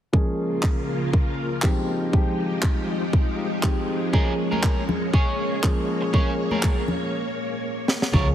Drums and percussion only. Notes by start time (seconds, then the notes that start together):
0.13 kick
0.63 kick, clap
1.13 kick
1.62 kick, clap
2.13 kick
2.62 kick, clap
3.13 kick
3.63 kick, clap
4.13 kick
4.52 high conga
4.63 kick, clap
4.89 low conga
5.13 kick
5.64 kick, clap
6.14 kick
6.51 high conga
6.63 kick, clap
6.88 low conga
7.88 snare
8.02 snare
8.13 kick